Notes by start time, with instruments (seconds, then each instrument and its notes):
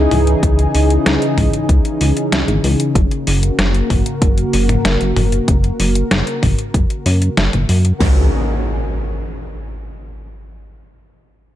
Already playing: analog synth pad C#3 E3 D#4 G#4, impact
0.11 analog synth bass C#2, open hi-hat, mid tom
0.27 closed hi-hat
0.43 analog synth bass C#2, kick, closed hi-hat
0.59 closed hi-hat
0.74 analog synth bass C#2, open hi-hat
0.90 closed hi-hat
1.06 analog synth bass C#2, snare, closed hi-hat
1.22 closed hi-hat
1.38 analog synth bass C#2, kick, open hi-hat, mid tom
1.53 closed hi-hat
1.69 analog synth bass C#2, kick, closed hi-hat
1.85 closed hi-hat
2.01 analog synth bass C#2, open hi-hat
2.17 closed hi-hat
2.32 analog synth bass C#2, snare, closed hi-hat
2.48 analog synth bass G#1, closed hi-hat
2.64 analog synth bass C#2, open hi-hat
2.80 closed hi-hat
2.95 analog synth bass F#1, analog synth pad A#3 F#4 A#4, kick, closed hi-hat
3.11 closed hi-hat
3.27 analog synth bass F#1, open hi-hat
3.43 closed hi-hat
3.59 analog synth bass F#1, snare, closed hi-hat
3.74 closed hi-hat
3.90 analog synth bass F#1, kick, open hi-hat, mid tom
4.06 closed hi-hat
4.22 analog synth bass F#1, kick, closed hi-hat
4.38 closed hi-hat
4.53 analog synth bass F#1, open hi-hat
4.69 closed hi-hat, mid tom
4.85 analog synth bass F#1, snare, closed hi-hat
5.01 analog synth bass F#1, closed hi-hat
5.16 analog synth bass F#1, open hi-hat, mid tom
5.32 closed hi-hat
5.48 analog synth bass F#1, kick, closed hi-hat
5.64 closed hi-hat
5.79 analog synth bass F#1, open hi-hat
5.95 closed hi-hat
6.11 analog synth bass F#1, snare, closed hi-hat
6.27 closed hi-hat
6.43 analog synth bass F#1, kick, open hi-hat, mid tom
6.59 closed hi-hat
6.74 analog synth bass F#1, kick, closed hi-hat
6.90 closed hi-hat
7.06 analog synth bass F#2, open hi-hat
7.22 closed hi-hat
7.37 analog synth bass F#1, snare, closed hi-hat
7.53 analog synth bass F#1, closed hi-hat, mid tom
7.69 analog synth bass F#2, open hi-hat
7.85 closed hi-hat
8.01 analog synth bass C#2, kick, snare, open hi-hat, impact